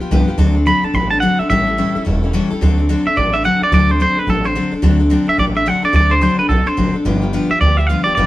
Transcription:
0.00 steel-string acoustic guitar F3 B3 F4 G4, muted upright bass stroke
0.11 upright bass C2, steel-string acoustic guitar G2 D3 F3 B3 F4 G4
0.28 steel-string acoustic guitar F3 B3 F4 G4
0.38 upright bass D2, steel-string acoustic guitar D3 F#3 C4 D4 A4
0.55 steel-string acoustic guitar C4 D4 A4
0.66 steel-string acoustic guitar D3 F#3 C4 D4 A4, clean electric guitar B5
0.83 steel-string acoustic guitar C4 D4 A4, clean electric guitar A5, muted upright bass stroke
0.94 upright bass A1, steel-string acoustic guitar F#3 C4 D4 A4, clean electric guitar B5
1.11 steel-string acoustic guitar C4 D4 A4, clean electric guitar A5
1.20 steel-string acoustic guitar D3 F#3 C4 D4 A4, clean electric guitar F#5
1.39 steel-string acoustic guitar C4 D4 A4, clean electric guitar E5, muted upright bass stroke
1.50 upright bass A1, steel-string acoustic guitar A2 E3 G3 C#4 E4 A4, clean electric guitar E5
1.67 steel-string acoustic guitar G3 C#4 E4 A4
1.78 steel-string acoustic guitar A2 E3 G3 C#4 E4 A4
1.95 steel-string acoustic guitar G3 C#4 E4 A4, muted upright bass stroke
2.05 upright bass E1, steel-string acoustic guitar G3 C#4 E4 A4
2.23 steel-string acoustic guitar G3 C#4 E4 A4
2.33 steel-string acoustic guitar A2 E3 G3 C#4 E4 A4
2.50 steel-string acoustic guitar G3 C#4 E4 A4, muted upright bass stroke
2.61 upright bass D2, steel-string acoustic guitar D3 F#3 C4 D4 A4
2.78 steel-string acoustic guitar C4 D4 A4
2.89 steel-string acoustic guitar D3 F#3 C4 D4 A4
3.06 steel-string acoustic guitar C4 D4 A4, clean electric guitar E5, muted upright bass stroke
3.16 upright bass A1, steel-string acoustic guitar F#3 C4 D4 A4, clean electric guitar D5
3.33 steel-string acoustic guitar C4 D4 A4, clean electric guitar E5
3.44 steel-string acoustic guitar D3 F#3 C4 D4 A4, clean electric guitar F#5
3.61 steel-string acoustic guitar C4 D4 A4, clean electric guitar D5, muted upright bass stroke
3.72 upright bass D2, steel-string acoustic guitar D3 F#3 C4 D4 A4, clean electric guitar D5
3.89 steel-string acoustic guitar C4 D4 A4, clean electric guitar C5
4.00 steel-string acoustic guitar D3 F#3 C4 D4 A4, clean electric guitar C5
4.17 steel-string acoustic guitar C4 D4 A4, clean electric guitar B4, muted upright bass stroke
4.27 upright bass A1, steel-string acoustic guitar F#3 C4 D4 A4, clean electric guitar A4
4.44 steel-string acoustic guitar C4 D4 A4, clean electric guitar C5
4.55 steel-string acoustic guitar D3 F#3 C4 D4 A4
4.71 steel-string acoustic guitar C4 D4 A4, muted upright bass stroke
4.82 upright bass D2, steel-string acoustic guitar D3 F#3 C4 D4 A4
4.99 steel-string acoustic guitar C4 D4 A4
5.10 steel-string acoustic guitar D3 F#3 C4 D4 A4
5.27 steel-string acoustic guitar C4 D4 A4, clean electric guitar E5, muted upright bass stroke
5.38 upright bass A1, steel-string acoustic guitar F#3 C4 D4 A4, clean electric guitar D5
5.55 steel-string acoustic guitar C4 D4 A4, clean electric guitar E5
5.66 steel-string acoustic guitar D3 F#3 C4 D4 A4, clean electric guitar F#5
5.82 steel-string acoustic guitar C4 D4 A4, clean electric guitar D5, muted upright bass stroke
5.93 upright bass D2, steel-string acoustic guitar D3 F#3 C4 D4 A4, clean electric guitar D5
6.10 steel-string acoustic guitar C4 D4 A4, clean electric guitar C5
6.21 steel-string acoustic guitar D3 F#3 C4 D4 A4, clean electric guitar C5
6.38 steel-string acoustic guitar C4 D4 A4, clean electric guitar B4, muted upright bass stroke
6.49 upright bass B1, steel-string acoustic guitar F#3 C4 D4 A4, clean electric guitar A4
6.66 steel-string acoustic guitar C4 D4 A4, clean electric guitar C5, muted upright bass stroke
6.77 upright bass A1, steel-string acoustic guitar D3 F#3 C4 D4 A4
6.94 steel-string acoustic guitar C4 D4 A4, muted upright bass stroke
7.05 upright bass G1, steel-string acoustic guitar G2 D3 F3 B3 F4 G4
7.22 steel-string acoustic guitar F3 B3 F4 G4
7.33 steel-string acoustic guitar G2 D3 F3 B3 F4 G4
7.50 steel-string acoustic guitar F3 B3 F4 G4, clean electric guitar E5, muted upright bass stroke
7.61 upright bass D2, steel-string acoustic guitar F3 B3 F4 G4, clean electric guitar D5
7.77 steel-string acoustic guitar F3 B3 F4 G4, clean electric guitar E5
7.87 steel-string acoustic guitar G2 D3 F3 B3, clean electric guitar F5
7.91 steel-string acoustic guitar F4 G4
8.04 steel-string acoustic guitar B3 F4 G4, clean electric guitar D5, muted upright bass stroke
8.08 steel-string acoustic guitar F3
8.15 upright bass G1, steel-string acoustic guitar G2 D3 F3 B3 F4 G4, clean electric guitar D5

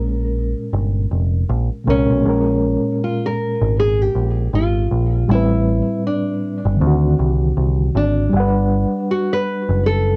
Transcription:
Already playing: picked electric bass A#1, reed electric piano A#2 G#3 C#4 A#4, nylon-string guitar A#4
0.73 picked electric bass G1
1.11 picked electric bass F1
1.49 picked electric bass A#1
1.84 picked electric bass C2, reed electric piano A#2 G#3 C#4
1.89 nylon-string guitar C#4, reed electric piano A#4
2.10 picked electric bass B1
2.19 reed electric piano A#2 G#3
2.25 picked electric bass A#1, reed electric piano C#4 A#4
3.04 nylon-string guitar F4
3.26 nylon-string guitar A#4
3.61 picked electric bass G#1
3.80 nylon-string guitar G#4
4.02 nylon-string guitar G4
4.15 picked electric bass A#1
4.53 picked electric bass G#1, nylon-string guitar F4
4.91 picked electric bass A#1
5.24 reed electric piano A2 G3
5.29 picked electric bass A1, reed electric piano C4, nylon-string guitar E4
5.35 reed electric piano B4
6.07 nylon-string guitar D4
6.65 picked electric bass G1
6.76 reed electric piano D3 C4
6.81 picked electric bass D2, reed electric piano D#3
6.87 reed electric piano F#4
7.19 picked electric bass C2
7.57 picked electric bass C2
7.95 picked electric bass G#1, nylon-string guitar D4
8.29 picked electric bass G1, reed electric piano G3 D4
8.36 reed electric piano B4 F#5
9.11 nylon-string guitar F#4
9.33 nylon-string guitar B4
9.69 picked electric bass F#1
9.86 nylon-string guitar A4

